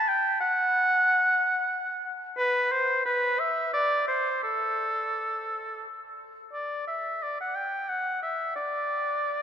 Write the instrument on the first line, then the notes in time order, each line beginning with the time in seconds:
oboe
0.08 G5
0.41 F#5
2.38 B4
2.72 C5
3.06 B4
3.40 E5
3.73 D5
4.08 C5
4.43 A4
6.53 D5
6.87 E5
7.23 D5
7.40 F#5
7.55 G5
7.89 F#5
8.23 E5
8.56 D5